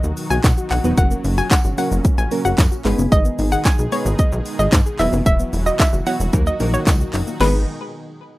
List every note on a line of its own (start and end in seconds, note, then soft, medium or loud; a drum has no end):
0.00 0.12 D#2 medium
0.00 0.94 B2 medium
0.00 0.96 D#3 medium
0.00 0.40 F#3 medium
0.00 2.81 F#3 medium
0.00 0.40 B3 medium
0.00 0.40 D#4 medium
0.00 0.96 D#4 medium
0.00 0.40 F#4 medium
0.00 2.81 F#4 medium
0.00 0.40 B4 medium
0.00 shaker medium
0.17 open hi-hat medium
0.17 shaker medium
0.30 0.39 B1 loud
0.30 0.39 F#4 medium
0.30 0.39 G#5 medium
0.30 shaker medium
0.44 0.52 B2 loud
0.44 0.53 F#5 loud
0.44 kick loud
0.44 snare loud
0.44 clap loud
0.44 closed hi-hat medium
0.44 tambourine loud
0.44 shaker medium
0.57 0.66 F#4 medium
0.57 shaker soft
0.71 0.79 B1 medium
0.71 0.79 D#4 medium
0.71 0.80 F#5 medium
0.71 clap medium
0.71 open hi-hat medium
0.71 shaker medium
0.84 0.93 E1 medium
0.84 0.94 F#3 medium
0.84 0.94 B3 medium
0.84 0.93 B3 medium
0.84 0.94 D#4 medium
0.84 0.94 F#4 medium
0.84 0.94 B4 medium
0.84 shaker medium
0.97 1.15 F#1 loud
0.97 2.83 A#2 medium
0.97 2.83 C#3 medium
0.97 1.54 F#3 medium
0.97 1.06 F#3 loud
0.97 1.54 A#3 medium
0.97 1.55 C#4 medium
0.97 2.83 C#4 medium
0.97 1.55 F#4 medium
0.97 1.55 A#4 medium
0.97 1.16 F#5 loud
0.97 kick loud
0.97 closed hi-hat medium
0.97 shaker medium
1.11 1.19 A#3 medium
1.11 shaker medium
1.24 1.41 F#1 loud
1.24 1.33 C#4 medium
1.24 open hi-hat medium
1.24 shaker soft
1.38 1.46 F#4 medium
1.38 1.47 G#5 medium
1.38 shaker medium
1.51 1.60 F#5 medium
1.51 1.69 F#5 medium
1.51 kick loud
1.51 snare medium
1.51 clap loud
1.51 closed hi-hat medium
1.51 tambourine medium
1.51 shaker medium
1.65 1.73 G#1 medium
1.65 1.73 F#4 medium
1.65 shaker soft
1.78 2.16 F#3 medium
1.78 2.16 A#3 medium
1.78 2.16 C#4 medium
1.78 2.16 F#4 medium
1.78 2.16 A#4 medium
1.78 1.87 F#5 medium
1.78 open hi-hat medium
1.78 shaker medium
1.92 2.00 F#1 medium
1.92 shaker medium
2.05 2.13 F#3 loud
2.05 kick loud
2.05 closed hi-hat medium
2.05 shaker medium
2.18 2.27 A#1 medium
2.18 2.27 G#5 medium
2.18 shaker medium
2.31 2.85 F#3 medium
2.31 2.85 A#3 medium
2.31 2.85 C#4 medium
2.31 2.85 F#4 medium
2.31 2.85 A#4 medium
2.31 open hi-hat medium
2.31 shaker medium
2.45 2.53 F#1 medium
2.45 2.53 F#4 medium
2.45 2.63 F#5 medium
2.45 shaker medium
2.58 2.67 F#2 loud
2.58 2.67 F#5 medium
2.58 kick loud
2.58 snare loud
2.58 clap loud
2.58 closed hi-hat medium
2.58 tambourine loud
2.58 shaker medium
2.72 2.80 F#4 medium
2.72 shaker soft
2.85 2.94 G#1 loud
2.85 6.30 B2 medium
2.85 4.97 D#3 medium
2.85 4.97 G#3 medium
2.85 3.71 G#3 loud
2.85 3.71 B3 loud
2.85 3.71 D#4 medium
2.85 2.93 D#4 medium
2.85 4.97 D#4 medium
2.85 4.97 G#4 medium
2.85 3.71 G#4 loud
2.85 3.71 B4 loud
2.85 clap medium
2.85 open hi-hat medium
2.85 shaker medium
2.98 3.07 F#1 medium
2.98 3.07 B3 medium
2.98 shaker medium
3.12 3.29 G#1 loud
3.12 3.20 G#3 medium
3.12 3.30 D#5 loud
3.12 kick loud
3.12 closed hi-hat medium
3.12 shaker medium
3.25 3.34 B3 medium
3.25 shaker medium
3.39 3.56 G#1 loud
3.39 3.47 D#4 medium
3.39 open hi-hat medium
3.39 shaker soft
3.52 3.60 G#4 medium
3.52 3.61 F#5 medium
3.52 shaker medium
3.65 3.74 G#5 medium
3.65 3.83 G#5 medium
3.65 kick loud
3.65 snare loud
3.65 clap loud
3.65 closed hi-hat medium
3.65 tambourine loud
3.65 shaker medium
3.79 3.87 B1 medium
3.79 3.87 G#4 medium
3.79 shaker soft
3.92 4.68 G#3 medium
3.92 4.68 B3 medium
3.92 4.68 D#4 medium
3.92 4.68 G#4 medium
3.92 4.68 B4 medium
3.92 4.01 C#5 medium
3.92 open hi-hat medium
3.92 shaker medium
4.06 4.14 G#1 loud
4.06 shaker medium
4.19 4.27 G#3 medium
4.19 4.28 D#5 medium
4.19 kick loud
4.19 closed hi-hat medium
4.19 shaker medium
4.32 4.41 B1 loud
4.32 shaker medium
4.46 open hi-hat medium
4.46 shaker medium
4.59 4.68 G#1 medium
4.59 4.68 G#4 medium
4.59 4.68 D#5 medium
4.59 shaker medium
4.72 4.81 G#2 loud
4.72 4.81 G#5 medium
4.72 kick loud
4.72 snare loud
4.72 clap loud
4.72 closed hi-hat medium
4.72 tambourine loud
4.72 shaker medium
4.86 4.94 G#4 medium
4.86 shaker soft
4.99 5.08 E1 loud
4.99 6.32 E3 medium
4.99 5.85 F#3 medium
4.99 6.32 F#3 medium
4.99 5.85 B3 medium
4.99 5.85 E4 medium
4.99 6.32 E4 medium
4.99 5.08 E4 medium
4.99 7.38 F#4 medium
4.99 5.85 F#4 medium
4.99 5.85 B4 loud
4.99 5.08 E5 medium
4.99 clap medium
4.99 open hi-hat medium
4.99 shaker medium
5.13 5.21 F#1 loud
5.13 5.21 B3 medium
5.13 shaker medium
5.26 5.43 E1 loud
5.26 5.35 F#3 medium
5.26 5.44 E5 loud
5.26 kick loud
5.26 closed hi-hat medium
5.26 shaker medium
5.39 5.48 B3 medium
5.39 shaker medium
5.53 5.70 E1 loud
5.53 5.61 E4 medium
5.53 open hi-hat medium
5.53 shaker soft
5.66 5.75 F#4 medium
5.66 5.75 D#5 medium
5.66 shaker medium
5.80 5.98 E5 medium
5.80 5.88 F#5 medium
5.80 kick loud
5.80 snare loud
5.80 clap loud
5.80 closed hi-hat medium
5.80 tambourine medium
5.80 shaker medium
5.93 6.02 F#1 loud
5.93 6.02 F#4 medium
5.93 shaker soft
6.06 6.32 F#3 medium
6.06 6.33 B3 medium
6.06 6.33 E4 medium
6.06 6.32 F#4 medium
6.06 6.33 C#5 medium
6.06 6.16 F#5 medium
6.06 open hi-hat medium
6.06 shaker medium
6.20 6.29 E1 medium
6.20 shaker medium
6.33 6.50 D#2 loud
6.33 7.40 A#2 medium
6.33 7.40 D#3 medium
6.33 6.55 F#3 medium
6.33 6.42 F#3 medium
6.33 7.40 F#3 medium
6.33 6.55 A#3 medium
6.33 6.55 D#4 medium
6.33 7.40 D#4 medium
6.33 6.55 F#4 medium
6.33 6.55 A#4 medium
6.33 kick loud
6.33 closed hi-hat medium
6.33 shaker medium
6.47 6.56 D#5 medium
6.47 shaker medium
6.60 6.77 A#1 medium
6.60 7.17 F#3 medium
6.60 7.17 A#3 medium
6.60 7.17 D#4 medium
6.60 7.17 F#4 medium
6.60 7.17 A#4 medium
6.60 open hi-hat medium
6.60 shaker medium
6.74 6.82 F#4 medium
6.74 6.83 C#5 medium
6.74 shaker medium
6.87 7.04 C#2 loud
6.87 6.95 F#5 loud
6.87 kick loud
6.87 snare medium
6.87 clap loud
6.87 closed hi-hat medium
6.87 tambourine loud
6.87 shaker medium
7.00 7.09 F#4 medium
7.00 shaker soft
7.14 7.22 F#1 loud
7.14 7.22 D#4 medium
7.14 clap medium
7.14 open hi-hat medium
7.14 shaker medium
7.27 7.36 A#3 medium
7.27 shaker medium
7.40 7.65 G#1 loud
7.40 7.65 B2 medium
7.40 7.65 D#3 medium
7.40 7.65 G#3 medium
7.40 7.65 B3 medium
7.40 7.66 B3 medium
7.40 7.65 D#4 medium
7.40 7.65 G#4 medium
7.40 7.65 B4 medium
7.40 7.66 B4 loud
7.40 snare loud
7.40 tambourine medium
7.40 crash medium